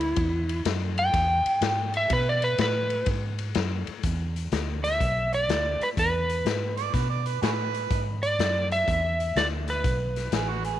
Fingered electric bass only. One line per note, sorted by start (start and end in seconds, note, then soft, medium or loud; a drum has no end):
0.00 0.15 D2 loud
0.17 0.64 E2 medium
0.65 1.12 F#2 loud
1.14 1.43 E2 medium
1.46 muted fingered electric bass stroke soft
1.61 2.08 G#2 loud
2.10 2.57 B2 medium
2.58 3.05 A2 loud
3.07 3.54 G#2 loud
3.55 3.85 F#2 loud
3.88 muted fingered electric bass stroke soft
4.04 4.50 E2 medium
4.52 4.99 D2 medium
5.00 5.47 B1 medium
5.49 5.78 D2 medium
5.97 6.44 E2 medium
6.45 6.92 G#2 medium
6.94 7.41 B2 medium
7.42 7.89 A2 medium
7.91 8.38 G#2 medium
8.39 8.86 F#2 medium
8.88 9.34 E2 medium
9.36 9.83 D2 loud
9.85 10.31 B1 medium
10.32 10.79 A1 medium